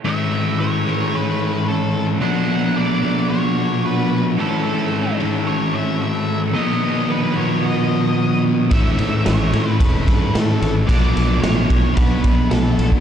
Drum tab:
RD |----------------|----------------|----------------|----------------|
SD |----------------|----------------|----------------|----------------|
BD |----------------|----------------|----------------|----------------|

RD |x-x-x-x-x-x-x-x-|x-x-x-x-x-x-x-x-|
SD |----o-----o-o---|----o-------o---|
BD |o-------o-o-----|o-----o-o-o----o|